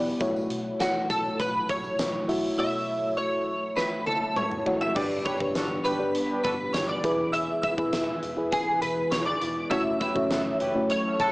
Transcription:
Already playing: B1 E3 G3 B3 D4 E4 G4 D5
0.05 tambourine
0.20 B1 B2 F#3 A3 E4 F#4 C#5, kick, closed hi-hat, tambourine
0.36 tambourine
0.50 B1, closed hi-hat, tambourine
0.80 B1 F#4 F#5, snare, closed hi-hat, tambourine
1.10 B1 A4 A5, kick, closed hi-hat, tambourine
1.25 tambourine
1.39 B1 B4 B5, kick, closed hi-hat, tambourine
1.69 B1 C#5 C#6, kick, closed hi-hat
1.84 tambourine
1.99 B1, snare, closed hi-hat, tambourine
2.28 B1 A3 E4 F#4 E5, open hi-hat, tambourine
2.58 B2 A3 E4 F#4 C#5 E5 E6
3.17 C#5 C#6
3.76 B4 B5, snare
4.06 A4 A5, high tom
4.36 C#5 C#6, mid tom
4.52 mid tom
4.66 A3 E4 F#4 C#5, floor tom
4.81 E5 E6, floor tom
4.95 G1 G2 G3 B3 D4 G4 B4 D5 D6, kick, crash
5.25 D4 G4 B4 C#5 C#6, kick, closed hi-hat
5.40 G1 D4 G4 B4, kick
5.55 G1 D4 F#4 A4, snare, closed hi-hat, tambourine
5.84 G1 D4 G4 B4 B5, closed hi-hat
5.99 D4 G4 B4
6.15 closed hi-hat
6.30 B3 D4 G4
6.43 G1 D4 F#4 A4 B4 B5, kick, closed hi-hat
6.73 G1 C#5 C#6, snare, closed hi-hat, tambourine
6.87 D5 D6
7.04 E1 E3 E4 G#4 B4, kick, closed hi-hat
7.32 E5 E6, closed hi-hat
7.62 E5 E6, kick, closed hi-hat
7.78 E1 E4 G#4 B4, kick
7.93 E1, snare, closed hi-hat, tambourine
8.23 E1, closed hi-hat
8.37 E4 G#4 B4
8.52 G#4 G#5, kick, closed hi-hat
8.82 E1 B4 B5, closed hi-hat
9.11 E1 C#5 C#6, snare, closed hi-hat, tambourine
9.25 D5 D6
9.42 E1, closed hi-hat
9.70 F#1 F#3 A3 C#4 E4 F#4 A4 C#5 E5 E6, kick, closed hi-hat
10.00 E4 G4 B4 E5 E6, kick, closed hi-hat
10.15 F#1 A3 C#4 E4 F#4 C#5, kick
10.31 F#1 E4 F#4 A4, snare, closed hi-hat, tambourine
10.60 F#1 E4 G4 B4, closed hi-hat
10.74 A3 C#4 E4 F#4 C#5
10.90 C#5 C#6, closed hi-hat
11.05 A3 C#4 F#4
11.20 F#1 E4 F#4 A4 A5, kick, closed hi-hat

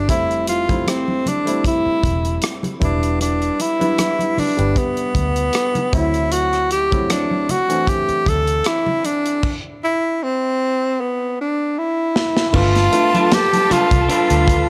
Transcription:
Already playing: G3 B3 E4
0.08 F1 G3 A3 C4 E4, kick, closed hi-hat, muted conga
0.31 closed hi-hat
0.47 F4, closed hi-hat, muted conga
0.68 G3 A3 C4 E4, kick, closed hi-hat, high conga
0.86 C4, cross-stick, closed hi-hat, high conga
1.08 high conga
1.26 D4, closed hi-hat, high conga, low conga
1.45 G3 A3 C4 E4, closed hi-hat
1.64 E4, kick, closed hi-hat, muted conga
1.86 muted fingered electric bass stroke
2.03 E1, kick, closed hi-hat, high conga
2.25 closed hi-hat
2.42 cross-stick, closed hi-hat, muted conga
2.63 closed hi-hat, high conga, low conga
2.80 E1 G3 B3 D4 E4, kick, closed hi-hat, muted conga
2.84 D4
3.03 closed hi-hat
3.20 D4, closed hi-hat, muted conga
3.42 closed hi-hat
3.60 E4, closed hi-hat, muted conga
3.79 G3 B3 D4 E4, closed hi-hat, high conga
3.98 cross-stick, closed hi-hat, muted conga, high conga
4.19 closed hi-hat, high conga
4.37 D4, muted fingered electric bass stroke, open hi-hat, high conga, low conga
4.56 G1 G3 B3 D4 G4, closed hi-hat
4.76 B3, kick, closed hi-hat
4.97 closed hi-hat
5.15 D2, kick, closed hi-hat, muted conga, high conga
5.36 closed hi-hat
5.53 cross-stick, closed hi-hat, muted conga
5.75 closed hi-hat, high conga, low conga
5.92 D2 F#3 A3 C4 E4, kick, closed hi-hat
6.14 closed hi-hat
6.32 F#4, closed hi-hat
6.53 cross-stick, closed hi-hat
6.71 G4, closed hi-hat, muted conga
6.91 F#3 A3 C4 E4, kick, closed hi-hat, high conga
7.10 D4, cross-stick, closed hi-hat, muted conga, high conga
7.31 high conga
7.49 F#4, closed hi-hat, muted conga, high conga, low conga
7.69 E3 A3 C4 D4, closed hi-hat
7.87 G4, kick, closed hi-hat
8.09 muted fingered electric bass stroke, closed hi-hat
8.26 D2 A4, kick, closed hi-hat, high conga
8.47 closed hi-hat
8.64 E4, cross-stick, closed hi-hat
8.86 high conga, low conga
9.04 D4, closed hi-hat, muted conga
9.26 closed hi-hat
9.43 kick, crash
9.84 E4
10.23 C4
11.01 B3
11.41 D4
11.78 E4
12.16 snare
12.37 snare
12.49 A3 B3 E4 F4
12.53 G1 G3 D4 F4 A4 B4 A5, kick, crash, muted conga
12.75 snare, closed hi-hat
12.91 A3 B3 D4 F4, muted clean electric guitar stroke, closed hi-hat, muted conga
13.14 D4 F4 B4, closed hi-hat, high conga
13.32 G4, snare, closed hi-hat, muted conga, high conga
13.53 muted clean electric guitar stroke, closed hi-hat, high conga
13.70 D4 F4 B4, muted fingered electric bass stroke, closed hi-hat, muted conga, high conga, low conga
13.91 C2, kick, closed hi-hat
14.09 D4 F4 B4, muted fingered electric bass stroke, closed hi-hat
14.30 D2, closed hi-hat
14.48 muted clean electric guitar stroke, kick, closed hi-hat, muted conga

